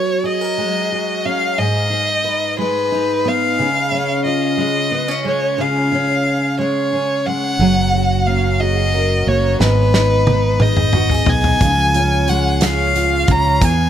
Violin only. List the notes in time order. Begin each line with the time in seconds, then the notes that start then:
Already playing: C#5
0.25 D#5
1.26 F5
1.59 D#5
2.60 B4
3.27 F5
4.26 D#5
5.27 C#5
5.61 F5
6.61 C#5
7.26 F#5
8.26 F5
8.61 D#5
9.28 C#5
9.61 B4
10.62 D#5
11.30 G#5
12.29 F#5
12.63 F5
13.31 A#5
13.64 G#5